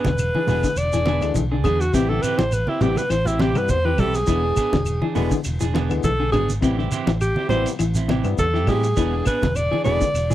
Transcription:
Already playing: B4
0.05 E1 D3, kick, snare, high conga, shekere
0.18 ride bell, high conga, claves, shekere
0.35 E3 D4 G#4, high conga
0.47 E1 D3 E3 G#3 B3 D4 G#4, open hi-hat, low conga, shekere
0.64 D3, kick, shekere
0.76 E1 D5, ride bell, high conga, claves, shekere
0.93 E3 D4 G#4, snare, shekere
1.06 D3 B3 D4 G#4, snare, ride bell, high conga
1.21 D2 D3 E3 G#3 D4, ride bell, claves, shekere
1.34 B1 E3, kick, ride bell, high conga, shekere
1.51 D3 D4 G#4
1.64 E2 D3 B3 D4 G#4, kick, ride bell, low conga, claves, shekere
1.81 F#4, shekere
1.93 A1 C3 E3 G3 B3 C4 E4 G4, kick, ride bell, shekere
2.09 D3 C4 E4 G4 A4
2.22 E3 C4 E4 G4 B4, muted fingered electric bass stroke, ride bell, claves, shekere
2.38 A1 E3 C5, snare, ride bell, high conga, shekere
2.52 B4, ride bell, high conga, claves, shekere
2.67 C4 E4 G4, high conga
2.81 A1 C3 E3 G3 B3 C4 E4 G4, ride bell, low conga, shekere
2.96 B4, ride bell, high conga, shekere
3.10 A1 E3 C5, snare, ride bell, high conga, claves, shekere
3.26 C4 E4 G4, low conga, shekere
3.39 C3 E3 C4 E4 G4, snare, ride bell, high conga
3.55 G2 C3 E3 G3 B3 B4, claves, shekere
3.69 E2 C5, kick, ride bell, high conga, shekere
3.85 E3 C4 G4 B4, muted clean electric guitar stroke
3.98 B1 E3 G3 C4 E4 G4 A4, kick, open hi-hat, low conga, claves, shekere
4.14 G#4, snare, ride bell, shekere
4.27 E1 D3 E3 G#3 B3 D4 G#4, kick, ride bell, shekere
4.43 D4 G#4
4.56 B3 D4 G#4, muted fingered electric bass stroke, kick, snare, ride bell, claves, shekere
4.73 E1 D3, kick, snare, high conga, shekere
4.86 ride bell, high conga, claves, shekere
5.02 E3 D4 G#4, high conga
5.15 E1 D3 E3 G#3 B3 D4 G#4, open hi-hat, low conga, shekere
5.31 D3, kick, high conga, shekere
5.44 E1, snare, ride bell, high conga, claves, shekere
5.60 E3 D4 G#4, snare, shekere
5.74 D3 B3 D4 G#4, snare, ride bell, high conga
5.89 D2 D3 E3 G#3 B3, ride bell, claves, shekere
6.03 B1 E3 A4, kick, ride bell, high conga, shekere
6.20 D3 D4 G#4
6.32 G#1 D3 B3 D4 G#4, kick, ride bell, low conga, claves, shekere
6.49 high conga, shekere
6.60 A1 C3 E3 G3 B3 C4 E4 G4, kick, ride bell, shekere
6.78 D3 C4 E4 G4, snare
6.91 E3 C4 E4 G4, muted fingered electric bass stroke, snare, ride bell, claves, shekere
7.07 A1 E3, snare, ride bell, high conga, shekere
7.20 G4, ride bell, high conga, claves, shekere
7.36 C4 E4 G4, high conga
7.48 A1 C3 E3 G3 B3 C4 E4 G4 C5, muted clean electric guitar stroke, ride bell, low conga, shekere
7.66 ride bell, shekere
7.79 A1 E3, ride bell, high conga, claves, shekere
7.95 C4 E4, muted clean electric guitar stroke, snare, shekere
8.08 C3 E3 C4 E4 G4, snare, ride bell, high conga
8.24 G2 C3 E3 G3 B3, claves, shekere
8.38 E2 A4, kick, ride bell, high conga, shekere
8.54 E3 C4 E4 G4, snare
8.67 A2 E3 G3 C4 E4 G4 G#4, kick, open hi-hat, low conga, claves, shekere
8.83 ride bell, shekere
8.97 E1 D3 E3 G#3 B3 D4 G#4, kick, snare, ride bell, shekere
9.13 D4 G#4
9.26 B3 D4 G#4 B4, muted fingered electric bass stroke, kick, snare, ride bell, claves, shekere
9.42 E1 D3, kick, snare, high conga, shekere
9.56 D5, snare, ride bell, high conga, claves, shekere
9.71 E3 D4 G#4, high conga
9.84 E1 D3 E3 G#3 B3 D4 G#4 D5, open hi-hat, low conga, shekere
10.01 D3, kick, high conga, shekere
10.14 E1, snare, ride bell, high conga, claves, shekere
10.30 E3 G#4, low conga, shekere

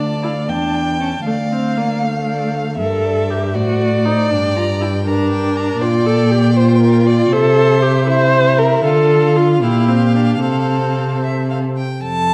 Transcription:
Already playing: D2 D5 A5
0.23 E4 F5
0.48 E2 D4 G5 A5
0.74 G5
1.00 C#4 A5
1.26 D2 A3 D5 F5
1.52 C4 F5
1.77 A#3 D5
2.02 A3 F5
2.28 D5
2.54 F5
2.79 G2 A4 A#4 E5
3.04 D5
3.30 G4 A#4
3.55 A2 F#4 C5 D5
3.81 D5
4.05 D#4 C5
4.30 G2 D4 G5
4.55 F4 A#5
4.81 E4 G5
5.06 D4 A#4 A#5
5.31 G5
5.56 A#5
5.81 A#2 F4 D5 G5
6.06 A4
6.31 G4
6.56 F4 C5
6.81 A#4
7.07 D5
7.32 C3 A4 C5 E5
7.82 G4
8.08 E4 C5
8.58 A#4
8.84 D3 F4 A4 F5
9.37 F4
9.63 A#2 E4 G4
9.88 C4
10.15 D4
10.42 C3 C4 A4
11.23 E5
11.50 F5
11.77 G5
12.03 F2 A4 A5

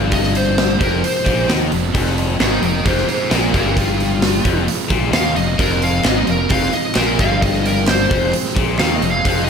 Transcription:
Already playing: G1 F2 G2 C3 F3 G#3 C4
0.11 F2 C3 F3 G#3 C4 D#5, kick, open hi-hat
0.24 snare
0.35 C5, open hi-hat
0.58 snare, open hi-hat
0.79 F1 F2, kick, open hi-hat
0.84 A#4
1.04 C5, open hi-hat
1.25 A#1 A#2, kick, open hi-hat
1.48 D#2 D#3, snare, open hi-hat
1.71 F1 F2 C3 F3 G#3 C4, open hi-hat
1.93 F1 F2 C3 F3 G#3 C4, kick, open hi-hat
2.07 snare
2.18 open hi-hat
2.39 G#1 G#2 A#4 D#5, snare, open hi-hat
2.62 F1 F2 A#4 D#5, open hi-hat
2.85 F1 F2 G#4 C5, kick, open hi-hat
2.98 snare
3.08 G#4 C5, muted overdriven electric guitar stroke, muted fingered electric bass stroke, open hi-hat
3.30 A#1 A#2 F4 A#4, snare, open hi-hat
3.53 G1 F2 G2 C3 F3 G#3 C4 F4 A#4, kick, open hi-hat
3.76 F2 C3 F3 G#3 C4 F4, kick, open hi-hat
4.00 open hi-hat
4.22 snare, open hi-hat
4.44 F1 F2, kick, open hi-hat
4.68 open hi-hat
4.89 A#1 A#2, kick, open hi-hat
5.11 D#2 D#3 F5, snare, open hi-hat
5.36 F1 F2 C3 F3 G#3 C4 D#5, open hi-hat
5.58 F1 F2 C3 F3 G#3 C4 G#4 A#4, kick, open hi-hat
5.82 F5, open hi-hat
6.03 G#1 G#2 D#5, snare, clap, open hi-hat
6.27 F1 F2 A#4, open hi-hat
6.49 F1 F2 F5, kick, clap, open hi-hat
6.63 snare
6.72 D#5, muted overdriven electric guitar stroke, muted fingered electric bass stroke, open hi-hat
6.94 A#1 A#2 A#4, snare, clap, open hi-hat
7.18 G1 F2 G2 C3 F3 G#3 C4 F5, kick, open hi-hat
7.42 F2 C3 F3 G#3 C4 D#5, kick, open hi-hat
7.54 snare
7.66 A#4, open hi-hat
7.87 C5, snare, clap, open hi-hat
8.10 F1 F2, kick, open hi-hat
8.33 clap, open hi-hat
8.45 snare
8.55 A#1 A#2, kick, open hi-hat
8.79 D#2 D#3 F5, snare, clap, open hi-hat
8.96 D#5
9.01 F1 F2 C3 F3 G#3 C4, open hi-hat
9.05 F2
9.11 F5
9.25 F1 F2 C3 F3 G#3 C4 F5, kick, open hi-hat
9.44 D#5

